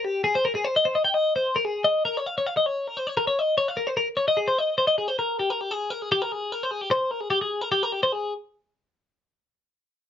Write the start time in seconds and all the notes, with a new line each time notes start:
0.05 G4
0.24 G#4
0.35 C5
0.45 A#4
0.55 G#4
0.65 C5
0.76 D#5
0.85 C5
0.95 D#5
1.05 G5
1.14 D#5
1.36 C5
1.56 A#4
1.65 G#4
1.84 D#5
2.05 A#4
2.17 C#5
2.26 F5
2.38 C#5
2.46 F5
2.57 D#5
2.66 C#5
2.88 A#4
2.97 C5
3.07 C#5
3.17 A#4
3.27 C#5
3.39 D#5
3.58 C#5
3.68 F5
3.77 A#4
3.87 C5
3.97 A#4
4.17 C#5
4.28 D#5
4.37 G#4
4.48 C5
4.59 D#5
4.78 C5
4.87 D#5
4.98 G#4
5.08 C5
5.19 A#4
5.39 G4
5.50 A#4
5.61 G4
5.71 G#4
5.90 A#4
6.02 G#4
6.12 G4
6.22 A#4
6.32 G#4
6.52 A#4
6.63 C5
6.71 G#4
6.81 G4
6.91 C5
7.11 A#4
7.21 G#4
7.30 G4
7.41 G#4
7.61 A#4
7.72 G4
7.83 A#4
7.92 G4
8.03 C5
8.12 G#4